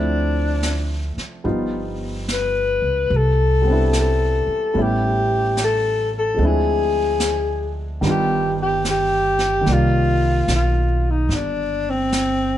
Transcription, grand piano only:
0.00 1.43 F3 soft
0.00 1.44 A3 soft
0.00 1.44 C4 soft
0.00 1.45 D4 soft
0.00 1.46 E4 medium
1.44 3.10 F3 soft
1.44 3.09 G3 soft
1.44 3.10 B3 soft
1.44 3.10 D#4 soft
1.44 3.10 F4 soft
3.62 4.72 G3 soft
3.62 4.74 B3 soft
3.67 4.76 C4 soft
3.67 4.77 D4 soft
3.72 4.77 E4 soft
4.74 6.38 G3 soft
4.74 6.38 A3 soft
4.74 6.39 B3 soft
4.74 6.39 C#4 soft
4.79 6.40 E4 medium
6.34 8.00 F3 soft
6.34 8.02 G#3 soft
6.39 8.03 C4 soft
6.39 8.04 D4 soft
6.45 8.06 E4 medium
8.01 9.60 D#3 soft
8.01 9.63 G3 soft
8.01 9.67 B3 soft
8.05 9.68 D4 soft
8.05 9.68 F4 medium
9.61 12.58 D#3 soft
9.61 12.58 G3 soft
9.67 12.58 A#3 soft
9.67 12.58 D5 soft
9.72 12.58 F4 soft

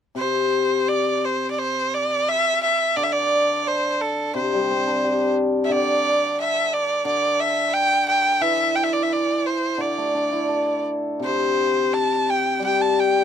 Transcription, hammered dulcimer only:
0.15 2.26 C3 soft
2.96 5.04 D3 soft
4.34 5.71 C3 medium
4.53 5.89 G3 soft
4.70 6.06 C4 soft
4.87 6.22 D4 soft
5.04 6.39 G4 soft
5.69 7.04 D3 medium
7.05 9.10 D3 medium
8.41 10.50 E3 medium
9.78 11.92 D3 soft
9.98 11.40 A3 soft
10.15 11.57 D4 soft
10.32 11.75 E4 soft
10.49 11.92 A4 soft
11.20 13.24 C3 soft
12.59 13.24 G3 soft

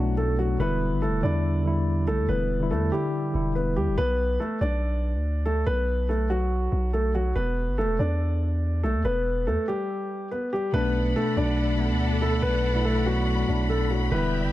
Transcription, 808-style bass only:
0.00 0.57 B1 loud
0.60 0.93 E1 loud
0.92 1.09 G1 loud
1.07 1.22 E1 loud
1.23 2.09 E2 loud
2.08 2.20 B1 loud
2.19 2.28 E2 loud
2.29 2.73 E1 loud
2.71 2.91 E2 loud
3.35 3.78 E1 loud
3.77 3.89 E2 loud
3.88 3.97 E1 loud
3.98 4.38 B1 loud
4.61 5.16 B1 loud
5.15 5.64 D2 loud
5.67 6.68 B1 loud
6.72 7.33 B1 loud
7.36 7.70 E1 loud
7.68 7.85 G1 loud
7.84 7.98 E1 loud
7.99 8.85 E2 loud
8.84 8.96 B1 loud
8.95 9.04 E2 loud
9.05 9.48 E1 loud
9.47 9.58 E2 medium
10.74 11.14 B1 loud
11.37 11.92 B1 loud
11.90 12.40 D2 loud
12.43 13.44 B1 loud
13.48 14.09 B1 loud
14.12 14.46 E1 loud
14.44 14.52 G1 loud

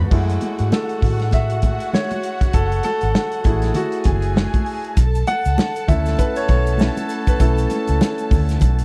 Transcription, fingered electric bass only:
0.12 0.37 F#2 medium
0.60 0.70 G#2 medium
1.03 1.77 A2 medium
2.54 2.79 F#1 medium
3.03 3.13 G#1 medium
3.45 3.70 A1 loud
4.06 4.45 F#1 medium
4.98 5.22 B1 loud
5.46 5.56 C#2 medium
5.89 6.14 D2 loud
6.49 6.88 B1 medium
7.41 7.65 B1 loud
7.89 7.99 C#2 medium
8.32 8.56 D2 loud
8.62 8.85 B1 loud

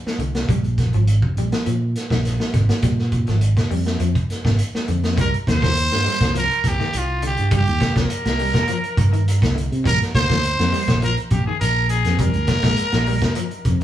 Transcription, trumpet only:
5.20 5.33 A#4 loud
5.49 6.32 C5 loud
6.37 6.69 A#4 loud
6.67 6.99 G4 medium
6.97 7.24 F4 medium
7.26 7.52 G4 medium
7.56 7.95 G4 loud
8.02 9.55 A#4 loud
9.87 9.99 A#4 loud
10.15 10.98 C5 loud
11.04 11.16 A#4 medium
11.32 11.46 G4 medium
11.46 11.59 G#4 medium
11.60 11.88 A#4 loud
11.89 12.17 G#4 medium
12.20 13.84 A#4 loud

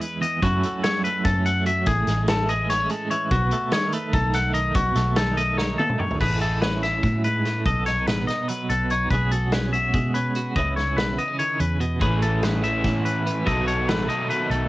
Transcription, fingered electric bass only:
0.42 0.62 F#2 medium
1.25 1.83 F#2 medium
1.87 2.06 A1 loud
2.07 2.86 A1 medium
3.31 3.51 B1 medium
4.14 4.72 B1 loud
4.75 4.95 B1 loud
4.96 5.75 B1 medium
6.20 6.99 A1 loud
7.04 7.62 A2 medium
7.66 8.06 B1 medium
8.06 8.26 A1 medium
8.70 9.08 B1 medium
9.10 9.90 B1 medium
9.94 10.52 B2 medium
10.56 10.97 C#2 medium
10.97 11.17 B1 medium
11.60 12.03 E2 medium
12.01 12.80 A1 loud
12.84 13.43 A2 medium
13.46 13.89 B1 medium
13.89 14.08 A1 loud
14.50 14.69 B1 medium

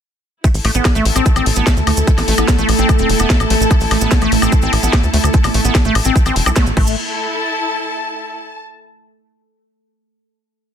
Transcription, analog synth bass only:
0.54 0.60 A1 medium
0.65 0.70 A1 loud
0.75 0.80 A1 loud
0.95 1.01 A1 medium
1.05 1.11 A1 loud
1.16 1.21 A1 medium
1.36 1.42 A1 medium
1.46 1.52 A1 loud
1.56 1.62 A1 medium
1.77 1.83 D2 medium
1.87 1.93 D2 medium
1.97 2.03 D2 medium
2.18 2.23 A1 medium
2.28 2.34 A1 loud
2.38 2.44 A1 medium
2.58 2.64 A1 medium
2.69 2.74 A1 loud
2.79 2.85 A1 medium
2.99 3.05 E1 medium
3.09 3.15 E1 loud
3.20 3.25 E1 medium
3.40 3.46 A1 medium
3.50 3.56 A1 loud
3.61 3.66 A1 medium
3.81 3.87 A1 medium
3.91 3.97 A1 loud
4.01 4.07 A1 medium
4.22 4.27 A1 medium
4.32 4.38 A1 loud
4.42 4.48 A1 loud
4.63 4.68 A1 medium
4.73 4.78 A1 loud
4.83 4.89 A1 medium
5.03 5.09 D2 medium
5.14 5.19 D2 loud
5.24 5.29 D2 loud
5.44 5.50 A1 medium
5.54 5.60 A1 loud
5.65 5.70 A1 medium
5.85 5.91 A1 medium
5.95 6.01 A1 loud
6.05 6.11 A1 medium
6.26 6.31 A1 medium
6.36 6.42 E1 loud
6.46 6.52 B1 medium
6.67 6.72 A1 medium
6.77 6.96 A1 loud

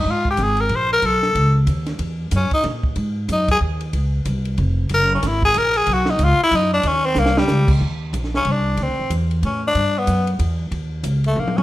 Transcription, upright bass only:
0.05 0.37 G#2 medium
0.38 0.69 G#1 medium
0.70 1.01 A#1 loud
1.02 1.34 B1 medium
1.35 1.66 C#2 loud
1.67 1.98 D#2 medium
1.99 2.30 E2 medium
2.31 2.50 F#2 loud
2.51 muted upright bass stroke soft
2.64 2.95 A#2 loud
2.96 3.27 G#2 medium
3.28 3.60 F#2 medium
3.61 3.92 D#2 medium
3.93 4.25 C#2 medium
4.26 4.57 C2 medium
4.58 4.89 F1 loud
4.90 5.22 F#1 medium
5.23 5.54 G#1 medium
5.55 5.86 A#1 loud
5.87 6.18 B1 medium
6.19 6.38 C#2 loud
6.39 muted upright bass stroke soft
6.51 6.83 F#2 loud
6.84 7.14 D#2 loud
7.15 7.47 C2 loud
7.48 7.79 C#2 medium
7.81 8.12 D#2 medium
8.13 8.44 A#1 medium
8.45 8.77 C2 medium
8.78 8.89 D2 medium
8.88 8.99 C2 medium
8.99 9.09 A1 medium
9.10 9.41 E2 medium
9.43 9.74 A2 medium
9.75 10.06 G2 medium
10.07 10.38 F#2 loud
10.39 10.70 E2 loud
10.71 11.03 D#2 medium
11.03 11.35 C#2 medium
11.36 11.63 A#1 medium

